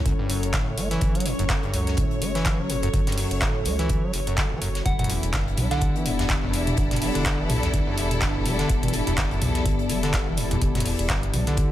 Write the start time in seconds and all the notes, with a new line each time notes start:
Already playing: C#2 F#3 C#4 E4 A4 C#5
0.06 F#2, kick, closed hi-hat
0.19 G2
0.30 F#1 F#2, closed hi-hat, open hi-hat
0.43 closed hi-hat
0.54 A2, kick, snare, clap, closed hi-hat
0.67 F#1
0.78 A3, closed hi-hat, open hi-hat
0.91 E3, snare, closed hi-hat
1.01 F#1 F#4, kick, closed hi-hat
1.15 F#3, closed hi-hat
1.20 closed hi-hat
1.25 A2, closed hi-hat, open hi-hat
1.39 F#1 F#2, closed hi-hat
1.49 F#2, kick, snare, clap, closed hi-hat
1.63 G2, closed hi-hat
1.74 C#2 F#2, closed hi-hat, open hi-hat
1.87 snare, closed hi-hat
1.97 A2, kick, closed hi-hat
2.11 closed hi-hat
2.21 F#1 A3, closed hi-hat, open hi-hat
2.35 E3, snare, closed hi-hat
2.45 kick, snare, clap, closed hi-hat
2.59 F#1 F#3
2.70 A2, closed hi-hat, open hi-hat
2.83 F#2, closed hi-hat
2.94 F#1 F#2, kick, closed hi-hat
3.07 G2, snare, closed hi-hat
3.12 closed hi-hat
3.18 F#2, open hi-hat
3.31 F#1, closed hi-hat
3.41 A2, kick, snare, clap, closed hi-hat
3.65 C#2 A3, closed hi-hat, open hi-hat
3.79 E3, snare, closed hi-hat
3.89 kick, closed hi-hat
4.03 F#3
4.13 F#1, closed hi-hat, open hi-hat
4.27 F#2, closed hi-hat
4.38 F#1, kick, snare, clap, closed hi-hat
4.51 F#1 F#3
4.62 F#2, closed hi-hat, open hi-hat
4.75 snare, closed hi-hat
4.86 E1 E2 E3 B3 D4 E4 G4 F#5, kick, closed hi-hat
4.99 F#2 F#5, closed hi-hat, mid tom
5.04 closed hi-hat
5.10 E2, closed hi-hat, open hi-hat
5.23 E1, closed hi-hat
5.32 G2 D5, kick, snare, clap, closed hi-hat
5.48 closed hi-hat
5.54 B1 G3 A4, closed hi-hat, mid tom, open hi-hat
5.71 D3 F#5, snare, closed hi-hat
5.81 kick, closed hi-hat
5.95 E3, closed hi-hat
6.06 E1 G2, closed hi-hat, open hi-hat
6.19 E2, snare, closed hi-hat
6.30 E2, kick, snare, clap, closed hi-hat
6.43 E1 F#2
6.53 E2, closed hi-hat, open hi-hat
6.67 closed hi-hat, mid tom
6.77 E1 G2, kick, closed hi-hat
6.91 snare, closed hi-hat, mid tom
6.96 closed hi-hat
7.02 G3, open hi-hat
7.15 E1 D3, closed hi-hat
7.26 kick, snare, clap, closed hi-hat
7.39 E3
7.49 B1 G2, closed hi-hat, mid tom, open hi-hat
7.63 E2, snare, closed hi-hat
7.74 E2, kick, closed hi-hat
7.87 F#2
7.98 E1 E2, closed hi-hat, open hi-hat
8.11 closed hi-hat, mid tom
8.21 G2, kick, snare, clap, closed hi-hat
8.35 E1
8.46 G3, closed hi-hat, mid tom, open hi-hat
8.59 D3, snare, closed hi-hat
8.69 E1 E4, kick, closed hi-hat
8.83 E3, closed hi-hat, mid tom
8.88 closed hi-hat
8.93 G2, closed hi-hat, open hi-hat
9.07 E1 E2, closed hi-hat
9.18 E2, kick, snare, clap, closed hi-hat
9.31 F#2, closed hi-hat
9.41 B1 E2, closed hi-hat, mid tom, open hi-hat
9.55 snare, closed hi-hat
9.65 G2, kick, closed hi-hat
9.79 closed hi-hat
9.89 E1 G3, closed hi-hat, open hi-hat
10.03 D3, snare, closed hi-hat
10.14 kick, snare, clap, closed hi-hat
10.27 E1 E3
10.37 G2, closed hi-hat, open hi-hat
10.51 E2, closed hi-hat, mid tom
10.62 E1 E2, kick, closed hi-hat
10.75 F#2, snare, closed hi-hat, mid tom
10.80 closed hi-hat
10.85 E2, open hi-hat
10.99 E1, closed hi-hat
11.10 G2, kick, snare, clap, closed hi-hat
11.23 closed hi-hat
11.34 B1 G3, closed hi-hat, mid tom, open hi-hat
11.47 D3, snare, closed hi-hat
11.57 kick, closed hi-hat